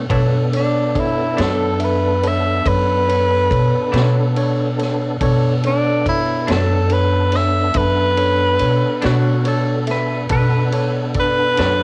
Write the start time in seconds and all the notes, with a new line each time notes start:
0.10 B2 F#3 A3 B3 D4 A4 C#5, kick, ride
0.53 D4 A4 C#5, ride
0.95 D4 A4 C#5, kick, ride
1.00 E4
1.37 F#2 B2 F#3 A3 D4 A4 C#5, snare, ride
1.42 A4
1.79 D4 A4 E5, ride
1.84 B4
2.23 D4 A4 C#5, ride
2.28 E5
2.65 F#2 D4 A4 B4 C#5, kick, ride
3.08 D4 A4 C#5, ride
3.49 B2 D4 A4 C#5, kick, ride
3.92 B2 F#3 A3 D4 A4 C#5, snare, ride
4.36 D4 A4 C#5, ride
4.78 D4 A4 C#5, snare, ride
5.20 B2 B3 D4 A4 C#5, kick, ride
5.63 D4 A4 C#5, ride
6.06 D4 E4 A4 C#5, kick, ride
6.47 F#2 B2 F#3 A3 D4 A4 C#5, snare, ride
6.90 D4 A4 B4 C#5, ride
7.32 D4 A4 C#5, snare, ride
7.36 E5
7.74 F#2 D4 A4 B4 E5, kick, ride
8.17 D4 A4 C#5, ride
8.59 B2 D4 A4 C#5, ride
9.02 B2 F#3 A3 D4 A4 C#5, snare, ride
9.06 F#4
9.44 D4 A4 C#5, ride
9.87 D4 A4 E5, snare, ride
9.91 B4
10.29 B2 B3 D4 A4 B4, kick, ride
10.72 D4 A4 C#5, ride
11.14 D4 A4 D5, kick, ride
11.19 B4
11.57 F#2 B2 F#3 A3 D4 A4 C#5, snare, ride